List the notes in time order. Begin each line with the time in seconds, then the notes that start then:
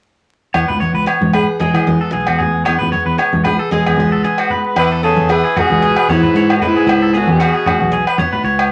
0.54 E2 B3 C#5, low agogo
0.68 C#2 B4, low conga
0.80 C#5, high conga
0.93 C#2 B4
1.06 E3 C#5, low agogo
1.21 G#2, high conga
1.33 G#4 B4, low conga, low agogo
1.60 B2 G#3 G#4, high conga
1.74 E3 G#4, low agogo
1.87 B3, high conga
2.01 A4
2.11 B1 E3 G#4
2.27 E2 F#4, low agogo
2.38 G#4, low conga
2.65 E2 B3 C#5, low agogo
2.79 E2 B4, low conga
2.92 C#5, high conga
3.05 E2 B4
3.18 E3 C#5, low agogo
3.33 C#2, high conga
3.44 G#4 B4, low conga, low agogo
3.59 A4
3.71 B2 G#3 G#4, high conga
3.86 E2 G#4, low agogo
3.97 C#2 B3, high conga
4.12 A4
4.24 E3 G#4
4.38 F#4, low agogo
4.50 B4, low conga
4.76 E2 E3 B4, low agogo
4.92 A4
5.03 C#3 B3 G#4 A4
5.17 E2, high conga
5.29 E3 G#4 B4, muted clean electric guitar stroke, low agogo
5.45 G#4
5.56 B2 F#4 G#4, high conga, low conga, low agogo
5.70 C#2, high conga
5.82 B2 G#4
5.96 B4, low agogo
6.08 E2 B3 E4 C#5, high conga
6.13 G#2
6.23 B4, low conga
6.34 G#2 E3 C#5
6.50 low agogo
6.57 A2 F#4
6.62 G#3 B4, low conga
6.66 G#2 E4
6.77 G#4
6.87 C#2 E2, muted clean electric guitar stroke, low agogo
7.02 A4
7.14 B3 G#4
7.18 A2 F#4
7.27 E2, high conga
7.31 B2 G#4
7.40 B3 F#4, muted steel-string acoustic guitar stroke, low agogo
7.54 G#4
7.66 F#4, high conga, low conga, low agogo
7.79 B1, high conga
7.92 B2 G#4
8.07 B4, low agogo
8.18 B3 C#5, high conga
8.33 B4, low conga
8.44 C#2 C#5
8.59 low agogo